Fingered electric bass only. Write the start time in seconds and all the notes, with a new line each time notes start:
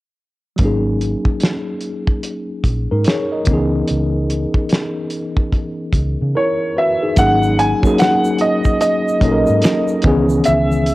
0.60 G#1
1.26 muted fingered electric bass stroke
2.65 A#1
2.92 G#2
3.48 C#2
3.91 C#2
4.56 muted fingered electric bass stroke
5.94 C#2
6.22 C#3
7.18 G#1
7.84 muted fingered electric bass stroke
9.22 A#1
9.50 G#2
10.05 C#2
10.48 C#2